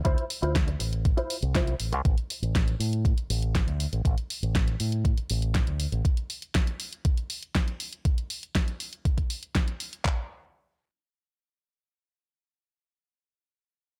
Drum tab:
HH |xxoxxxoxxxoxxxox|xxoxxxoxxxoxxxox|xxoxxxoxxxoxxxox|xxoxxxoxxxoxxxox|
CP |----------------|----------------|----------------|----------------|
SD |----o-------o---|----o-------o---|----o-------o---|----o-------o---|
BD |o---o---o---o---|o---o---o---o---|o---o---o---o---|o---o---o---o---|

HH |xxoxxxoxxxoxxxox|----------------|----------------|
CP |----------------|x---------------|----------------|
SD |----o-------o---|----------------|----------------|
BD |o---o---oo--o---|o---------------|----------------|